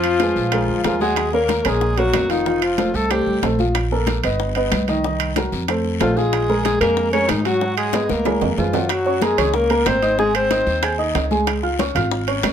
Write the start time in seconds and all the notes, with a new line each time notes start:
Already playing: F2 F3 F4 F5
0.04 high conga, high timbale, claves
0.20 G#3 G#4 B4, high bongo, high conga, high timbale, short guiro
0.36 A#1, high bongo, short guiro
0.52 G#3 G#4 A#4, high bongo, high conga, high timbale, long guiro, claves
0.68 D2, high bongo, high conga
0.84 D#2 F3 G#3 F4 G#4 A#4, high bongo, low bongo, high conga, high timbale, short guiro
1.00 F#3 G#3 F#4 G#4 F#5, high bongo, high conga, short guiro
1.16 high bongo, high timbale, long guiro, claves
1.33 A#3 A#4 C#5, high bongo, high conga
1.49 high bongo, high conga, high timbale, short guiro
1.65 A#1 G#3 A#3 G#4 A#4 C#5, high conga, high timbale, short guiro, claves
1.81 high bongo, high conga, long guiro
1.97 F#3 A#3 F#4 A#4 C#5, high bongo, high conga, high timbale
2.13 F1, high bongo, low bongo, high conga, high timbale, low timbale, short guiro, claves
2.30 D#3 F3 D#4 F4 F5, high bongo, high timbale, short guiro
2.46 F3 F4 F5, high bongo, high conga, long guiro
2.62 F3 F4, high conga, high timbale, claves
2.78 A3 A4 C5, high bongo, high conga, high timbale, short guiro
2.94 C2 A3 A4, high bongo, high conga, short guiro
3.10 G3 A3 G4 A4 C5, high bongo, high conga, high timbale, long guiro, claves
3.26 C2, high bongo, high conga
3.42 A#1 A3 A4 C5, high bongo, low bongo, high conga, high timbale, low timbale, short guiro
3.59 F3 F4 F5, high bongo, high conga, short guiro
3.75 high bongo, high conga, high timbale, long guiro, claves
3.91 A#3 A4 A#4, high bongo, high conga
4.07 high bongo, high conga, high timbale, short guiro
4.23 G1 B3 B4 D#5, high conga, high timbale, short guiro, claves
4.39 high bongo, high conga, long guiro
4.55 B3 B4 D#5, high bongo, high conga, high timbale
4.71 C2, high bongo, low bongo, high conga, high timbale, short guiro, claves
4.88 D#3 D#4 D#5, high bongo, high conga, high timbale, short guiro
5.04 D#3 D#4 D#5, high bongo, long guiro
5.20 high conga, high timbale, claves
5.36 F#3 F#4 A#4, high bongo, high conga, high timbale, short guiro
5.52 F2, high bongo, high conga, short guiro
5.68 A3 A4 C5, high bongo, high conga, high timbale, long guiro, claves
5.85 high bongo, high conga
6.00 A#1 F3 A3 F4 A4 C5, high bongo, low bongo, high conga, high timbale, low timbale, short guiro
6.16 F3 G#3 F4 G#4 F5, high bongo, short guiro
6.33 high bongo, high conga, high timbale, long guiro, claves
6.49 G#3 G#4 A#4, high bongo, high conga
6.65 G#3 G#4, high bongo, high conga, high timbale, short guiro
6.81 F2 G#3 A#3 G#4 A#4, high timbale, short guiro, claves
6.97 high bongo, high conga, long guiro
7.13 G#3 C#4 G#4 A#4 C#5, high bongo, high conga, high timbale
7.29 G#2 D#3 D#4, high bongo, low bongo, high conga, high timbale, short guiro, claves
7.44 F#3 F#4 F#5, high bongo, high timbale, short guiro
7.61 F#3 F#4 F#5, high bongo, high conga, long guiro
7.77 G#3 G#4, high conga, high timbale, claves
7.93 B3 B4 D#5, high bongo, high conga, high timbale, short guiro
8.09 C#2 A#3 A#4, high bongo, high conga, short guiro
8.25 G#3 G#4 A#4, low bongo, high conga, high timbale, long guiro, claves
8.41 F2, low bongo, low conga, low timbale
8.57 F#2 F3 G#3 F4 G#4 B4, low conga, short guiro
8.73 F#3 F#4 F#5, low bongo, low conga, low timbale, short guiro
8.89 F#3 F#4, high bongo, high conga, high timbale, long guiro, claves
9.06 C#4 C#5 C#6, high bongo, high conga
9.22 G#3 A#3 G#4 A#4 A#5, high bongo, high conga, high timbale, short guiro
9.38 C#2 C#4 C#5 C#6, high conga, low conga, high timbale, short guiro, claves
9.54 A#3 A#4, high bongo, long guiro
9.70 A#3 A#4 A#5, high bongo, high conga, high timbale
9.86 G#1 C4 C5, high bongo, low bongo, high conga, high timbale, low timbale, short guiro, claves
10.02 D#4 D#5 D#6, high bongo, high conga, high timbale, short guiro
10.18 G#3 G#4 G#5, high bongo, high conga, long guiro
10.35 C4 C5, high conga, high timbale, claves
10.51 D#4 D#5 D#6, high bongo, high conga, high timbale, short guiro
10.67 D#2, high bongo, short guiro
10.83 G#4 G#5 G#6, high bongo, high conga, high timbale, long guiro, claves
10.98 D#4 D#5 D#6, high bongo, high conga
11.15 C#2, high bongo, low bongo, high conga, high timbale, low timbale, short guiro
11.31 G#3 G#4 G#5, high bongo, high conga, short guiro
11.47 high bongo, high timbale, long guiro, claves
11.63 F4 F5 F6, high bongo, high conga
11.79 C#4 C#5 C#6, high bongo, high conga, high timbale, short guiro
11.95 G#1 F4 F5 F6, high conga, low conga, high timbale, short guiro, claves
12.12 high bongo, high conga, long guiro
12.28 C#4 C#5 C#6, high bongo, high conga, high timbale
12.43 C#2, high bongo, low bongo, high conga, high timbale, low timbale, short guiro, claves